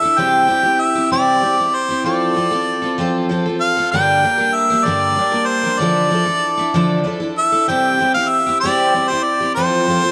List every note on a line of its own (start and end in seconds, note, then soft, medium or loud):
0.00 0.17 A4 soft
0.00 0.21 E5 medium
0.04 0.18 D4 soft
0.04 0.18 E4 soft
0.18 0.48 C3 medium
0.18 0.46 G3 medium
0.18 0.47 C4 medium
0.18 0.49 E4 medium
0.18 0.50 G4 medium
0.18 0.82 G5 loud
0.48 0.64 G3 medium
0.48 0.64 C4 medium
0.48 0.64 E4 medium
0.48 0.62 G4 medium
0.63 0.97 C4 soft
0.63 0.95 E4 soft
0.63 0.94 G4 medium
0.81 1.11 E5 medium
0.95 1.11 C4 soft
0.95 1.11 E4 soft
0.95 1.11 G4 soft
1.11 1.42 C3 medium
1.11 1.40 G3 medium
1.11 1.42 C4 medium
1.11 1.43 E4 medium
1.11 1.43 G4 medium
1.11 1.76 D5 loud
1.42 1.57 G3 medium
1.42 1.58 C4 medium
1.42 1.59 E4 medium
1.46 1.56 G4 medium
1.58 1.91 C4 soft
1.58 1.89 E4 soft
1.58 1.87 G4 medium
1.74 2.05 C5 medium
1.89 2.04 C4 soft
1.89 2.05 E4 soft
1.89 2.04 G4 soft
2.04 2.33 F3 medium
2.04 2.35 C4 medium
2.04 2.36 F4 medium
2.04 2.37 A4 medium
2.04 3.26 D5 medium
2.34 2.51 F3 medium
2.34 2.51 C4 medium
2.34 2.52 F4 medium
2.34 2.50 A4 medium
2.51 2.84 C4 soft
2.51 2.83 F4 soft
2.51 2.81 A4 medium
2.82 2.98 C4 soft
2.82 2.99 F4 medium
2.82 2.98 A4 medium
2.98 3.28 F3 medium
2.98 3.30 C4 medium
2.98 3.30 F4 medium
2.98 3.31 A4 medium
3.29 3.45 F3 medium
3.29 3.46 C4 medium
3.29 3.46 F4 medium
3.29 3.44 A4 medium
3.46 3.78 C4 soft
3.46 3.77 F4 soft
3.46 3.76 A4 medium
3.60 3.89 F5 medium
3.77 3.93 C4 soft
3.77 3.93 F4 soft
3.77 3.92 A4 soft
3.92 4.24 G2 medium
3.92 4.24 D3 medium
3.92 4.22 G3 medium
3.92 4.23 A#3 medium
3.92 4.24 D4 medium
3.92 4.25 A#4 medium
3.92 4.56 G5 loud
4.23 4.39 G3 medium
4.23 4.39 A#3 medium
4.23 4.38 D4 medium
4.23 4.37 A#4 medium
4.38 4.71 G3 soft
4.38 4.70 A#3 soft
4.38 4.70 D4 soft
4.38 4.69 A#4 medium
4.55 4.87 E5 medium
4.70 4.85 G3 soft
4.70 4.86 A#3 soft
4.70 4.86 D4 soft
4.70 4.85 A#4 medium
4.85 5.17 G2 medium
4.85 5.17 D3 medium
4.85 5.14 G3 medium
4.85 5.16 A#3 medium
4.85 5.17 D4 medium
4.85 5.18 A#4 medium
4.85 5.48 D5 loud
5.16 5.32 G3 medium
5.16 5.32 A#3 medium
5.16 5.31 D4 medium
5.16 5.31 A#4 medium
5.32 5.65 G3 soft
5.32 5.64 A#3 soft
5.32 5.63 D4 soft
5.32 5.62 A#4 medium
5.46 5.81 C5 medium
5.63 5.80 G3 soft
5.63 5.80 A#3 soft
5.63 5.80 D4 soft
5.63 5.79 A#4 soft
5.79 6.10 D3 medium
5.79 6.09 F3 medium
5.79 6.10 D4 medium
5.79 6.11 E4 medium
5.79 6.12 A4 medium
5.79 7.04 D5 medium
6.11 6.26 F3 medium
6.11 6.27 D4 medium
6.11 6.26 E4 medium
6.11 6.24 A4 medium
6.26 6.59 D4 soft
6.26 6.58 E4 soft
6.26 6.56 A4 medium
6.58 6.74 D4 soft
6.58 6.74 E4 medium
6.58 6.73 A4 medium
6.74 7.05 D3 medium
6.74 7.02 F3 medium
6.74 7.03 D4 medium
6.74 7.04 E4 medium
6.74 7.05 A4 loud
7.04 7.19 F3 medium
7.04 7.20 D4 medium
7.04 7.20 E4 medium
7.04 7.19 A4 medium
7.20 7.52 D4 soft
7.20 7.52 E4 soft
7.20 7.51 A4 medium
7.38 7.66 E5 loud
7.52 7.68 D4 soft
7.52 7.68 E4 soft
7.52 7.67 A4 medium
7.68 7.98 C3 medium
7.68 7.98 G3 medium
7.68 7.99 C4 medium
7.68 7.99 E4 medium
7.68 7.99 G4 medium
7.68 8.11 G5 loud
7.99 8.14 G3 medium
7.99 8.14 C4 medium
7.99 8.15 E4 medium
7.99 8.14 G4 medium
8.14 8.46 E4 soft
8.14 8.45 G4 medium
8.14 8.31 F5 medium
8.19 8.47 C4 soft
8.29 8.60 E5 medium
8.46 8.62 C4 soft
8.46 8.62 E4 soft
8.46 8.61 G4 medium
8.60 8.93 C3 medium
8.60 9.10 D5 medium
8.65 8.93 G3 medium
8.65 8.93 C4 medium
8.65 8.94 E4 medium
8.65 8.94 G4 medium
8.94 9.08 G3 medium
8.94 9.08 C4 medium
8.94 9.09 E4 medium
8.94 9.09 G4 medium
9.08 9.40 E4 soft
9.08 9.39 G4 soft
9.08 9.24 C5 medium
9.13 9.41 C4 soft
9.23 9.54 D5 medium
9.40 9.56 C4 soft
9.40 9.55 E4 soft
9.40 9.55 G4 medium
9.55 9.85 F3 medium
9.55 9.86 C4 medium
9.55 9.87 F4 medium
9.55 10.12 C5 medium
9.59 9.87 A4 medium
9.87 10.01 F3 medium
9.87 10.02 C4 medium
9.87 10.02 F4 medium
9.87 10.00 A4 medium
10.02 10.12 C4 soft
10.02 10.12 F4 soft
10.02 10.12 A4 medium